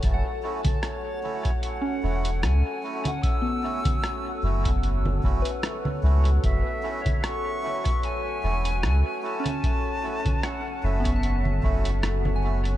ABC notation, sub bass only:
X:1
M:4/4
L:1/8
Q:"Swing 16ths" 1/4=75
K:F#m
V:1 name="Sub bass" clef=bass
F,,, z4 E,,, C,, z | z3 F,,,2 F,,, z C,, | F,,, z4 E,,, C,, z | z3 F,,,2 F,,,3 |]